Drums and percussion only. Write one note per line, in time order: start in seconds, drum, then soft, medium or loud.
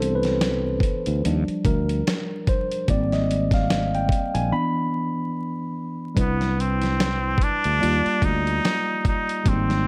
0.02 closed hi-hat medium
0.23 snare soft
0.23 closed hi-hat soft
0.41 snare loud
0.41 closed hi-hat medium
0.80 kick medium
0.80 closed hi-hat medium
1.06 closed hi-hat medium
1.25 closed hi-hat medium
1.48 closed hi-hat soft
1.65 kick medium
1.65 closed hi-hat medium
1.89 closed hi-hat soft
2.07 snare loud
2.07 closed hi-hat medium
2.47 kick medium
2.47 closed hi-hat medium
2.71 closed hi-hat medium
2.88 kick loud
2.88 closed hi-hat medium
3.12 snare soft
3.12 closed hi-hat soft
3.31 closed hi-hat medium
3.51 kick loud
3.51 snare soft
3.51 closed hi-hat soft
3.70 snare medium
3.70 closed hi-hat medium
3.95 closed hi-hat soft
4.09 kick loud
4.09 closed hi-hat medium
4.35 closed hi-hat medium
6.17 kick loud
6.17 closed hi-hat medium
6.41 snare soft
6.41 closed hi-hat soft
6.60 closed hi-hat medium
6.82 snare soft
6.82 closed hi-hat soft
7.00 snare medium
7.00 closed hi-hat medium
7.38 kick medium
7.38 closed hi-hat medium
7.64 closed hi-hat medium
7.83 closed hi-hat medium
8.06 closed hi-hat soft
8.22 kick medium
8.22 closed hi-hat medium
8.47 closed hi-hat soft
8.65 snare loud
8.65 closed hi-hat medium
9.05 kick medium
9.05 closed hi-hat soft
9.29 closed hi-hat medium
9.46 kick loud
9.46 closed hi-hat medium
9.70 snare soft
9.70 closed hi-hat soft